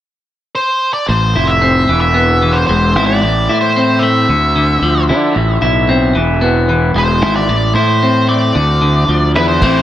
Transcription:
0.55 0.93 C5 medium
0.93 1.08 D5 medium
1.08 1.34 A1 medium
1.08 1.89 A2 medium
1.08 1.50 C5 medium
1.35 1.85 F1 medium
1.35 2.96 E4 medium
1.47 2.00 E5 medium
1.62 1.89 C4 medium
1.89 2.65 E1 medium
1.89 2.42 E3 medium
2.01 2.56 E5 medium
2.14 3.21 B3 medium
2.42 4.29 E3 medium
2.53 2.66 C5 medium
2.67 2.95 E1 medium
2.67 3.22 G#3 medium
2.67 3.06 C5 medium
2.95 3.20 G#1 medium
2.95 3.49 E4 medium
3.06 3.57 D5 medium
3.22 3.47 A1 medium
3.22 4.29 A2 medium
3.49 4.25 A2 medium
3.49 4.32 E4 medium
3.61 4.03 C5 medium
3.76 4.29 C4 medium
3.99 4.29 A3 medium
3.99 5.03 E5 medium
4.28 4.78 D2 medium
4.28 4.55 D3 medium
4.56 5.35 D3 medium
4.82 5.11 D2 medium
4.82 5.36 F3 medium
5.09 5.34 D3 medium
5.09 5.61 E4 medium
5.35 5.60 A1 medium
5.35 6.15 A2 medium
5.62 6.12 B1 medium
5.62 7.21 E4 medium
5.89 6.15 C4 medium
6.15 6.91 E1 medium
6.15 6.69 E3 medium
6.41 7.48 B3 medium
6.69 8.55 E3 medium
6.95 7.22 E1 medium
6.95 7.49 G#3 medium
6.95 7.35 C5 medium
7.22 7.47 G#1 medium
7.22 7.75 E4 medium
7.36 7.73 D5 medium
7.48 7.73 A1 medium
7.48 8.56 A2 medium
7.74 8.51 A2 medium
7.74 8.55 E4 medium
7.74 8.28 C5 medium
8.02 8.55 C4 medium
8.29 8.55 A3 medium
8.29 9.31 D5 medium
8.55 9.05 D2 medium
8.55 8.80 D3 medium
8.81 9.62 D3 medium
9.08 9.36 D2 medium
9.08 9.62 F3 medium
9.36 9.61 E2 medium
9.36 9.62 E4 medium
9.36 9.48 B4 medium
9.48 9.82 C5 medium
9.62 9.82 A1 medium
9.62 9.82 E3 medium
9.62 9.82 A3 medium
9.62 9.82 C4 medium
9.62 9.82 E4 medium
9.62 kick medium
9.62 crash medium

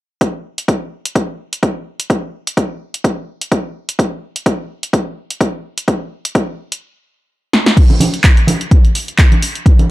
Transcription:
0.21 kick loud
0.21 closed hi-hat soft
0.58 closed hi-hat medium
0.68 kick loud
0.68 closed hi-hat soft
1.05 closed hi-hat medium
1.15 kick loud
1.15 closed hi-hat soft
1.53 closed hi-hat medium
1.63 kick loud
1.63 closed hi-hat soft
2.00 closed hi-hat medium
2.10 kick loud
2.10 closed hi-hat soft
2.47 closed hi-hat medium
2.57 kick loud
2.57 closed hi-hat soft
2.94 closed hi-hat medium
3.04 kick loud
3.04 closed hi-hat soft
3.41 closed hi-hat medium
3.52 kick loud
3.52 closed hi-hat soft
3.89 closed hi-hat medium
3.99 kick loud
3.99 closed hi-hat soft
4.36 closed hi-hat medium
4.46 kick loud
4.46 closed hi-hat soft
4.83 closed hi-hat medium
4.93 kick loud
4.93 closed hi-hat soft
5.30 closed hi-hat medium
5.41 kick loud
5.41 closed hi-hat soft
5.78 closed hi-hat medium
5.88 kick loud
5.88 closed hi-hat soft
6.25 closed hi-hat medium
6.35 kick loud
6.35 closed hi-hat soft
6.72 closed hi-hat medium
7.53 snare medium
7.66 snare medium
7.77 kick loud
7.77 closed hi-hat medium
7.77 crash medium
7.90 closed hi-hat soft
7.90 tambourine soft
7.90 high conga medium
8.00 open hi-hat medium
8.00 tambourine medium
8.00 high conga medium
8.13 closed hi-hat soft
8.13 tambourine soft
8.24 kick loud
8.24 clap loud
8.24 closed hi-hat medium
8.24 tambourine medium
8.37 closed hi-hat soft
8.37 tambourine soft
8.47 open hi-hat loud
8.47 tambourine medium
8.47 high conga medium
8.61 closed hi-hat soft
8.61 tambourine soft
8.71 kick loud
8.71 closed hi-hat medium
8.85 closed hi-hat soft
8.85 tambourine soft
8.95 open hi-hat medium
8.95 tambourine medium
9.08 closed hi-hat soft
9.08 tambourine soft
9.19 kick loud
9.19 clap loud
9.19 closed hi-hat medium
9.32 closed hi-hat soft
9.32 tambourine soft
9.32 high conga medium
9.42 open hi-hat loud
9.42 tambourine medium
9.55 closed hi-hat soft
9.55 tambourine soft
9.66 kick loud
9.66 closed hi-hat medium
9.79 closed hi-hat soft
9.79 tambourine soft
9.79 high conga medium

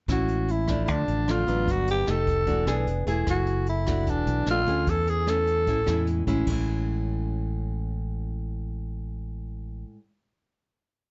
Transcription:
0.08 0.88 A1 medium
0.08 0.86 A2 soft
0.08 0.65 G#3 soft
0.08 0.65 C#4 soft
0.08 0.65 E4 soft
0.08 0.52 F#4 medium
0.08 kick medium
0.08 cross-stick medium
0.08 closed hi-hat medium
0.28 closed hi-hat soft
0.48 0.82 E4 medium
0.48 closed hi-hat soft
0.67 1.25 F3 medium
0.67 1.25 A3 soft
0.67 1.26 D4 medium
0.67 kick medium
0.67 cross-stick medium
0.67 closed hi-hat soft
0.84 1.07 D2 medium
0.84 0.93 E4 medium
0.84 kick soft
0.84 closed hi-hat soft
0.89 1.66 D3 medium
0.89 1.32 D4 medium
1.08 1.45 A1 medium
1.08 closed hi-hat soft
1.28 1.45 F3 medium
1.28 1.45 A3 medium
1.28 1.45 D4 medium
1.28 1.72 F4 medium
1.28 cross-stick medium
1.28 closed hi-hat soft
1.47 1.66 A1 medium
1.47 2.04 F#3 medium
1.47 2.04 B3 medium
1.47 2.04 D4 medium
1.47 closed hi-hat soft
1.67 2.05 G1 medium
1.67 2.05 G2 soft
1.67 kick medium
1.67 closed hi-hat medium
1.71 1.89 F#4 medium
1.87 2.12 G4 medium
1.87 closed hi-hat soft
2.07 2.47 F1 medium
2.07 2.46 A3 medium
2.07 2.46 D#4 soft
2.07 2.46 G4 medium
2.07 cross-stick medium
2.07 closed hi-hat soft
2.11 2.89 A4 medium
2.27 kick soft
2.27 closed hi-hat soft
2.47 2.66 E1 medium
2.47 2.85 E3 medium
2.47 2.64 A3 soft
2.47 2.64 D4 medium
2.47 2.64 F#4 medium
2.47 kick soft
2.47 closed hi-hat soft
2.67 2.86 B1 medium
2.67 3.04 B3 medium
2.67 3.04 D4 medium
2.67 3.04 G#4 medium
2.67 cross-stick medium
2.67 closed hi-hat soft
2.87 3.06 F1 medium
2.87 closed hi-hat soft
3.07 3.26 E1 medium
3.07 3.84 A3 medium
3.07 3.84 E4 medium
3.07 3.84 G#4 medium
3.07 closed hi-hat soft
3.27 4.07 F#1 medium
3.27 4.06 F#3 soft
3.27 3.66 F#4 medium
3.27 kick medium
3.27 cross-stick medium
3.27 closed hi-hat soft
3.46 closed hi-hat soft
3.66 4.11 E4 medium
3.66 closed hi-hat soft
3.86 4.44 A3 medium
3.86 4.44 D4 medium
3.86 4.44 F#4 medium
3.86 kick medium
3.86 cross-stick medium
3.86 closed hi-hat soft
4.07 4.26 E1 medium
4.07 4.45 E3 soft
4.07 4.48 D4 medium
4.07 kick soft
4.07 closed hi-hat medium
4.27 4.46 B1 medium
4.27 closed hi-hat soft
4.46 4.65 A#1 medium
4.46 4.59 F3 soft
4.46 4.60 A3 medium
4.46 4.60 D4 medium
4.46 cross-stick medium
4.46 closed hi-hat soft
4.50 4.91 F4 medium
4.66 4.85 D2 medium
4.66 5.24 A3 medium
4.66 5.24 C#4 medium
4.66 5.24 G#4 medium
4.66 closed hi-hat soft
4.87 5.67 E2 medium
4.87 5.65 E3 soft
4.87 5.11 A4 medium
4.87 kick medium
4.87 closed hi-hat medium
5.07 5.30 G#4 medium
5.07 closed hi-hat soft
5.27 5.65 A3 medium
5.27 5.66 C#4 medium
5.27 6.08 A4 medium
5.27 cross-stick medium
5.27 closed hi-hat soft
5.47 closed hi-hat soft
5.67 5.86 A1 medium
5.67 6.45 A2 medium
5.67 5.79 G#3 soft
5.67 5.79 C#4 soft
5.67 5.79 E4 medium
5.67 kick medium
5.67 closed hi-hat soft
5.86 6.25 E2 medium
5.86 6.23 G#3 medium
5.86 6.24 C#4 medium
5.86 6.24 E4 medium
5.86 cross-stick medium
5.86 closed hi-hat soft
6.07 closed hi-hat soft
6.27 6.45 A1 medium
6.27 6.47 G#3 medium
6.27 6.49 C#4 medium
6.27 6.50 E4 medium
6.27 kick soft
6.27 closed hi-hat soft
6.46 9.83 A1 medium
6.46 9.96 A2 soft
6.46 9.98 G#3 medium
6.46 kick medium
6.46 crash medium
6.50 10.00 C#4 medium
6.50 10.02 E4 medium

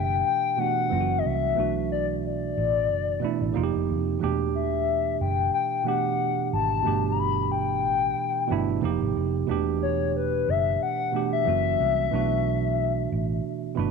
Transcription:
0.00 0.21 F#1 loud
0.00 0.13 B2 medium
0.00 0.14 E3 medium
0.00 0.14 A3 medium
0.00 0.15 D4 medium
0.00 0.16 G4 medium
0.00 0.25 G5 loud
0.26 0.60 G5 loud
0.57 0.90 B2 medium
0.57 0.88 E3 medium
0.57 0.91 A3 medium
0.57 0.92 D4 medium
0.57 1.20 F#5 loud
0.61 0.92 F#4 medium
0.90 1.20 F#1 loud
0.90 1.50 E3 medium
0.90 1.51 F#3 medium
0.90 1.51 A#3 medium
0.90 1.52 C#4 medium
0.94 0.99 F4 medium
1.00 1.56 F#4 medium
1.18 1.27 D#5 medium
1.25 1.53 C2 medium
1.25 1.90 E5 medium
1.55 2.52 B1 loud
1.55 2.77 B2 medium
1.55 2.77 E3 medium
1.55 2.78 A3 medium
1.55 2.78 D4 medium
1.60 2.79 F#4 medium
1.92 2.06 D5 medium
2.25 3.84 D5 loud
2.58 2.90 A1 loud
2.90 3.18 F#1 loud
3.20 3.53 B2 medium
3.20 3.54 E3 medium
3.20 3.54 A3 medium
3.20 3.55 D4 medium
3.20 muted fingered electric bass stroke soft
3.24 3.56 E4 medium
3.41 3.53 A1 medium
3.52 4.14 C3 medium
3.52 4.14 F3 medium
3.52 4.15 A#3 medium
3.52 4.15 D#4 medium
3.57 3.71 F1 loud
3.57 3.62 F4 medium
3.63 4.19 G4 loud
3.75 3.91 F1 medium
3.90 4.17 F2 medium
4.19 5.16 E1 loud
4.19 5.40 B2 medium
4.19 5.41 E3 medium
4.19 5.42 A3 medium
4.19 5.42 D4 medium
4.24 5.43 G4 loud
4.55 5.16 E5 medium
5.21 5.49 F#1 medium
5.21 5.51 G5 loud
5.54 5.84 G5 medium
5.84 6.75 B2 medium
5.84 6.75 E3 medium
5.84 6.76 A3 medium
5.84 6.77 D4 medium
5.84 6.48 F#5 loud
5.88 6.77 G4 medium
6.53 6.80 G#1 medium
6.53 7.13 A5 loud
6.83 7.85 G1 loud
6.83 8.04 B2 medium
6.83 8.05 E3 medium
6.83 8.05 A3 medium
6.83 8.06 D4 medium
6.87 8.06 G4 medium
7.12 7.20 A#5 medium
7.19 7.51 B5 medium
7.52 9.11 G5 loud
7.85 8.12 A1 medium
8.48 8.78 G1 medium
8.48 8.81 B2 medium
8.48 8.82 E3 medium
8.48 8.82 A3 medium
8.48 8.83 D4 medium
8.52 8.83 E4 loud
8.81 8.98 F1 loud
8.81 9.41 C3 loud
8.81 9.42 F3 loud
8.81 9.42 A#3 medium
8.81 9.43 D#4 medium
8.85 9.44 G4 loud
9.02 9.13 G#1 loud
9.17 9.44 F1 medium
9.46 10.43 E1 loud
9.46 10.68 B2 medium
9.46 10.68 E3 medium
9.46 10.69 A3 medium
9.46 10.69 D4 medium
9.51 10.70 G4 loud
9.82 10.12 C#5 medium
10.17 10.51 B4 loud
10.48 10.76 F#1 loud
10.48 10.81 E5 loud
10.83 11.28 F#5 loud
11.12 11.45 B2 medium
11.12 11.43 E3 medium
11.12 11.46 A3 medium
11.12 11.46 D4 medium
11.16 11.47 G4 medium
11.33 13.91 E5 medium
11.44 11.75 F#1 medium
11.44 12.05 E3 medium
11.44 12.06 F#3 medium
11.44 12.06 A#3 medium
11.44 12.07 C#4 medium
11.49 12.07 F#4 medium
11.80 12.08 C2 medium
12.10 13.07 B1 loud
12.10 13.32 B2 medium
12.10 13.32 E3 medium
12.10 13.33 A3 medium
12.10 13.33 D4 medium
12.15 13.34 F#4 loud
13.12 13.40 A1 medium
13.75 13.91 G1 loud
13.75 13.91 B2 medium
13.75 13.91 E3 medium
13.75 13.91 A3 medium
13.75 13.91 D4 medium
13.75 13.91 B5 medium
13.79 13.91 F#4 loud

